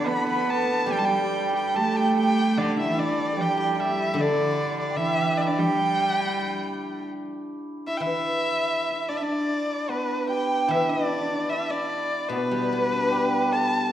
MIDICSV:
0, 0, Header, 1, 5, 480
1, 0, Start_track
1, 0, Tempo, 845070
1, 506, Time_signature, 2, 2, 24, 8
1, 986, Tempo, 807537
1, 3386, Tempo, 834492
1, 4826, Tempo, 810811
1, 8167, End_track
2, 0, Start_track
2, 0, Title_t, "Erhu"
2, 0, Program_c, 0, 110
2, 43, Note_on_c, 0, 83, 86
2, 153, Note_off_c, 0, 83, 0
2, 164, Note_on_c, 0, 83, 74
2, 284, Note_on_c, 0, 81, 84
2, 293, Note_off_c, 0, 83, 0
2, 523, Note_on_c, 0, 79, 79
2, 532, Note_off_c, 0, 81, 0
2, 561, Note_on_c, 0, 81, 68
2, 569, Note_off_c, 0, 79, 0
2, 596, Note_on_c, 0, 79, 79
2, 605, Note_off_c, 0, 81, 0
2, 872, Note_off_c, 0, 79, 0
2, 884, Note_on_c, 0, 79, 68
2, 1001, Note_on_c, 0, 81, 79
2, 1010, Note_off_c, 0, 79, 0
2, 1124, Note_on_c, 0, 79, 80
2, 1133, Note_off_c, 0, 81, 0
2, 1238, Note_off_c, 0, 79, 0
2, 1245, Note_on_c, 0, 79, 85
2, 1488, Note_on_c, 0, 74, 81
2, 1497, Note_off_c, 0, 79, 0
2, 1599, Note_off_c, 0, 74, 0
2, 1615, Note_on_c, 0, 76, 75
2, 1731, Note_on_c, 0, 74, 78
2, 1740, Note_off_c, 0, 76, 0
2, 1981, Note_on_c, 0, 79, 82
2, 1990, Note_off_c, 0, 74, 0
2, 2085, Note_off_c, 0, 79, 0
2, 2093, Note_on_c, 0, 79, 74
2, 2164, Note_off_c, 0, 79, 0
2, 2164, Note_on_c, 0, 79, 58
2, 2214, Note_on_c, 0, 76, 75
2, 2223, Note_off_c, 0, 79, 0
2, 2456, Note_on_c, 0, 74, 81
2, 2465, Note_off_c, 0, 76, 0
2, 2797, Note_off_c, 0, 74, 0
2, 2805, Note_on_c, 0, 74, 71
2, 2906, Note_on_c, 0, 76, 89
2, 2915, Note_off_c, 0, 74, 0
2, 3148, Note_on_c, 0, 74, 71
2, 3157, Note_off_c, 0, 76, 0
2, 3175, Note_on_c, 0, 76, 61
2, 3184, Note_off_c, 0, 74, 0
2, 3206, Note_on_c, 0, 74, 70
2, 3215, Note_off_c, 0, 76, 0
2, 3282, Note_on_c, 0, 79, 83
2, 3291, Note_off_c, 0, 74, 0
2, 4119, Note_off_c, 0, 79, 0
2, 4592, Note_on_c, 0, 76, 73
2, 4651, Note_on_c, 0, 79, 61
2, 4660, Note_off_c, 0, 76, 0
2, 4676, Note_on_c, 0, 76, 86
2, 4684, Note_off_c, 0, 79, 0
2, 5306, Note_on_c, 0, 74, 77
2, 5314, Note_off_c, 0, 76, 0
2, 5354, Note_on_c, 0, 76, 58
2, 5362, Note_off_c, 0, 74, 0
2, 5390, Note_on_c, 0, 74, 76
2, 5398, Note_off_c, 0, 76, 0
2, 5788, Note_on_c, 0, 71, 76
2, 5797, Note_off_c, 0, 74, 0
2, 6019, Note_off_c, 0, 71, 0
2, 6022, Note_on_c, 0, 79, 73
2, 6266, Note_on_c, 0, 76, 77
2, 6275, Note_off_c, 0, 79, 0
2, 6377, Note_on_c, 0, 74, 82
2, 6386, Note_off_c, 0, 76, 0
2, 6733, Note_on_c, 0, 76, 83
2, 6742, Note_off_c, 0, 74, 0
2, 6852, Note_on_c, 0, 74, 83
2, 6860, Note_off_c, 0, 76, 0
2, 7197, Note_on_c, 0, 71, 84
2, 7205, Note_off_c, 0, 74, 0
2, 7932, Note_on_c, 0, 81, 77
2, 7941, Note_off_c, 0, 71, 0
2, 8167, Note_off_c, 0, 81, 0
2, 8167, End_track
3, 0, Start_track
3, 0, Title_t, "Hammered dulcimer"
3, 0, Program_c, 1, 15
3, 0, Note_on_c, 1, 59, 59
3, 0, Note_on_c, 1, 62, 54
3, 0, Note_on_c, 1, 64, 69
3, 0, Note_on_c, 1, 69, 66
3, 23, Note_on_c, 1, 71, 78
3, 139, Note_off_c, 1, 71, 0
3, 141, Note_on_c, 1, 71, 76
3, 251, Note_off_c, 1, 69, 0
3, 253, Note_on_c, 1, 69, 62
3, 306, Note_off_c, 1, 59, 0
3, 487, Note_on_c, 1, 67, 66
3, 578, Note_off_c, 1, 67, 0
3, 580, Note_on_c, 1, 67, 60
3, 617, Note_off_c, 1, 64, 0
3, 867, Note_off_c, 1, 67, 0
3, 869, Note_on_c, 1, 67, 59
3, 988, Note_off_c, 1, 69, 0
3, 991, Note_on_c, 1, 69, 77
3, 1115, Note_off_c, 1, 67, 0
3, 1117, Note_on_c, 1, 67, 68
3, 1238, Note_off_c, 1, 67, 0
3, 1241, Note_on_c, 1, 67, 66
3, 1480, Note_off_c, 1, 62, 0
3, 1482, Note_on_c, 1, 62, 63
3, 1605, Note_on_c, 1, 64, 59
3, 1715, Note_off_c, 1, 62, 0
3, 1718, Note_on_c, 1, 62, 61
3, 1721, Note_off_c, 1, 71, 0
3, 1927, Note_off_c, 1, 69, 0
3, 1929, Note_on_c, 1, 69, 47
3, 1951, Note_off_c, 1, 67, 0
3, 1954, Note_on_c, 1, 67, 75
3, 2070, Note_off_c, 1, 67, 0
3, 2073, Note_on_c, 1, 67, 67
3, 2154, Note_off_c, 1, 67, 0
3, 2156, Note_on_c, 1, 67, 51
3, 2192, Note_off_c, 1, 64, 0
3, 2194, Note_on_c, 1, 64, 58
3, 2430, Note_off_c, 1, 62, 0
3, 2432, Note_on_c, 1, 62, 63
3, 2863, Note_off_c, 1, 67, 0
3, 2865, Note_on_c, 1, 67, 45
3, 2911, Note_off_c, 1, 64, 0
3, 2913, Note_on_c, 1, 64, 72
3, 3155, Note_off_c, 1, 62, 0
3, 3157, Note_on_c, 1, 62, 55
3, 3207, Note_off_c, 1, 62, 0
3, 3209, Note_on_c, 1, 62, 59
3, 3269, Note_off_c, 1, 67, 0
3, 3271, Note_on_c, 1, 67, 59
3, 3658, Note_off_c, 1, 69, 0
3, 4592, Note_off_c, 1, 64, 0
3, 4594, Note_on_c, 1, 64, 55
3, 4678, Note_off_c, 1, 64, 0
3, 4681, Note_on_c, 1, 64, 61
3, 5087, Note_off_c, 1, 67, 0
3, 5196, Note_off_c, 1, 64, 0
3, 5198, Note_on_c, 1, 64, 53
3, 5305, Note_off_c, 1, 62, 0
3, 5307, Note_on_c, 1, 62, 60
3, 5381, Note_off_c, 1, 62, 0
3, 5384, Note_on_c, 1, 62, 57
3, 5779, Note_on_c, 1, 59, 64
3, 6016, Note_on_c, 1, 67, 60
3, 6245, Note_off_c, 1, 64, 0
3, 6247, Note_on_c, 1, 64, 64
3, 6369, Note_off_c, 1, 62, 0
3, 6371, Note_on_c, 1, 62, 67
3, 6421, Note_off_c, 1, 62, 0
3, 6423, Note_on_c, 1, 62, 48
3, 6462, Note_off_c, 1, 62, 0
3, 6464, Note_on_c, 1, 62, 52
3, 6508, Note_off_c, 1, 62, 0
3, 6510, Note_on_c, 1, 62, 43
3, 6560, Note_off_c, 1, 62, 0
3, 6562, Note_on_c, 1, 62, 54
3, 6587, Note_off_c, 1, 62, 0
3, 6589, Note_on_c, 1, 62, 46
3, 6634, Note_off_c, 1, 62, 0
3, 6636, Note_on_c, 1, 62, 51
3, 6736, Note_off_c, 1, 64, 0
3, 6738, Note_on_c, 1, 64, 68
3, 6848, Note_off_c, 1, 62, 0
3, 6850, Note_on_c, 1, 62, 66
3, 7221, Note_off_c, 1, 59, 0
3, 7224, Note_on_c, 1, 59, 67
3, 7681, Note_off_c, 1, 67, 0
3, 7684, Note_on_c, 1, 67, 68
3, 7935, Note_on_c, 1, 69, 58
3, 8167, Note_off_c, 1, 59, 0
3, 8167, Note_off_c, 1, 62, 0
3, 8167, Note_off_c, 1, 64, 0
3, 8167, Note_off_c, 1, 67, 0
3, 8167, Note_off_c, 1, 69, 0
3, 8167, End_track
4, 0, Start_track
4, 0, Title_t, "Cello"
4, 0, Program_c, 2, 42
4, 35, Note_on_c, 2, 59, 84
4, 511, Note_off_c, 2, 59, 0
4, 515, Note_on_c, 2, 55, 75
4, 587, Note_off_c, 2, 55, 0
4, 605, Note_on_c, 2, 55, 71
4, 1002, Note_on_c, 2, 57, 79
4, 1011, Note_off_c, 2, 55, 0
4, 1482, Note_on_c, 2, 50, 74
4, 1491, Note_off_c, 2, 57, 0
4, 1598, Note_on_c, 2, 52, 67
4, 1607, Note_off_c, 2, 50, 0
4, 1962, Note_on_c, 2, 55, 78
4, 1971, Note_off_c, 2, 52, 0
4, 2423, Note_on_c, 2, 50, 69
4, 2432, Note_off_c, 2, 55, 0
4, 2904, Note_on_c, 2, 52, 81
4, 2913, Note_off_c, 2, 50, 0
4, 3271, Note_on_c, 2, 55, 73
4, 3280, Note_off_c, 2, 52, 0
4, 4113, Note_off_c, 2, 55, 0
4, 8167, End_track
5, 0, Start_track
5, 0, Title_t, "Guzheng"
5, 0, Program_c, 3, 107
5, 0, Note_on_c, 3, 50, 60
5, 0, Note_on_c, 3, 67, 41
5, 263, Note_off_c, 3, 67, 0
5, 490, Note_on_c, 3, 55, 55
5, 979, Note_off_c, 3, 50, 0
5, 1941, Note_off_c, 3, 55, 0
5, 2413, Note_on_c, 3, 50, 61
5, 3860, Note_off_c, 3, 50, 0
5, 4667, Note_on_c, 3, 52, 47
5, 6103, Note_off_c, 3, 52, 0
5, 6251, Note_on_c, 3, 52, 55
5, 7204, Note_on_c, 3, 47, 54
5, 7334, Note_on_c, 3, 55, 43
5, 7458, Note_on_c, 3, 59, 40
5, 7576, Note_on_c, 3, 62, 34
5, 7689, Note_off_c, 3, 52, 0
5, 7697, Note_on_c, 3, 67, 34
5, 8167, Note_off_c, 3, 47, 0
5, 8167, Note_off_c, 3, 55, 0
5, 8167, Note_off_c, 3, 59, 0
5, 8167, Note_off_c, 3, 62, 0
5, 8167, Note_off_c, 3, 67, 0
5, 8167, End_track
0, 0, End_of_file